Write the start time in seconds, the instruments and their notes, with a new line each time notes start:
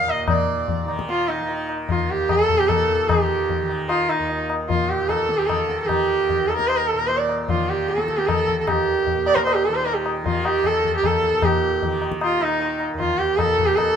Already playing: tanpura D#2 D#3, sarangi F5
0.05 tanpura A#2, tabla na
0.10 sarangi D#5
0.28 tanpura A#2, sarangi D5, tabla na, tabla ge
0.68 tabla tin, tabla ge
0.85 tanpura D#3, tabla na
0.99 tabla ke
1.09 sarangi F4, tabla te
1.28 sarangi D#4, tabla te
1.41 tanpura D#3
1.49 tabla tin
1.69 tabla na
1.89 sarangi F4, tabla tin, tabla ge
1.96 tanpura D#2
2.10 sarangi G4
2.29 sarangi A4, tabla na, tabla ge
2.49 tanpura A#2, tabla ge
2.58 sarangi G4
2.67 sarangi A4, tabla na, tabla ge
2.89 tabla ge
3.07 tanpura D#3, sarangi G4, tabla na, tabla ge
3.49 tabla tin, tabla ge
3.63 tanpura D#3
3.69 tabla na
3.89 sarangi F4, tabla na
4.09 sarangi D#4, tabla na
4.19 tanpura D#2
4.30 tabla tin
4.50 tabla na
4.69 sarangi F4, tabla tin, tabla ge
4.74 tanpura A#2
4.89 sarangi G4
5.09 sarangi A4, tabla na, tabla ge
5.29 tanpura D#3, tabla te
5.37 sarangi G4
5.46 sarangi A4, tabla na, tabla ge
5.69 tabla te
5.82 tanpura D#3, sarangi A4
5.87 sarangi G4, tabla na, tabla ge
6.29 tabla tin, tabla ge
6.39 tanpura D#2
6.47 sarangi A4, tabla na
6.57 sarangi A#4, tabla ke
6.67 sarangi C5, tabla na
6.77 sarangi A#4
6.87 sarangi A4
6.94 tanpura A#2
6.98 sarangi A#4
7.07 sarangi C5, tabla tin
7.18 sarangi D5
7.29 tabla na
7.49 tanpura D#3, sarangi F4, tabla tin, tabla ge
7.69 sarangi G4
7.88 sarangi A4, tabla te
7.98 tabla te
8.05 tanpura D#3, tabla ke
8.17 sarangi G4, tabla te
8.27 sarangi A4, tabla na, tabla ge
8.48 tabla ge
8.59 tanpura D#2, sarangi A4
8.67 sarangi G4, tabla na, tabla ge
9.07 tabla tin, tabla ge
9.14 tanpura A#2
9.26 sarangi D5, tabla na
9.35 sarangi A#4, tabla ke
9.45 sarangi C5, tabla na
9.54 sarangi G4
9.65 tanpura D#3, sarangi A4
9.75 sarangi C5
9.85 sarangi A#4, tabla tin
9.94 sarangi G4
10.06 tabla na
10.23 tanpura D#3, sarangi F4, tabla tin, tabla ge
10.45 sarangi G4, tabla na
10.64 sarangi A4, tabla na, tabla ge
10.78 tanpura D#2
10.84 tabla ge
10.96 sarangi G4
11.03 sarangi A4, tabla na, tabla ge
11.23 tabla ge
11.32 tanpura A#2
11.42 sarangi G4, tabla na, tabla ge
11.82 tanpura D#3, tabla tin, tabla ge
12.02 tabla na
12.12 tabla ke
12.21 sarangi F4, tabla na
12.39 tanpura D#3, sarangi D#4, tabla na
12.60 tabla tin
12.80 tabla na
12.94 tanpura D#2
12.99 sarangi F4, tabla tin, tabla ge
13.18 sarangi G4
13.37 sarangi A4, tabla na, tabla ge
13.47 tanpura A#2
13.59 tabla ge
13.66 sarangi G4
13.75 sarangi A4, tabla na, tabla ge